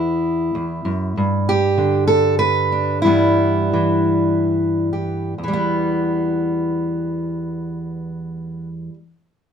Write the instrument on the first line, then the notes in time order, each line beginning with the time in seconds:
steel-string acoustic guitar
Already playing: E2 B3 E4
0.55 E2
0.85 F#2
1.17 G2
1.49 G4
1.77 D3
2.07 A4
2.39 B4
2.72 D4
3.02 G2 E3 G3 E4
3.06 B3
3.73 E3
4.93 G4
5.38 E2
5.44 E3
5.48 G3
5.53 B3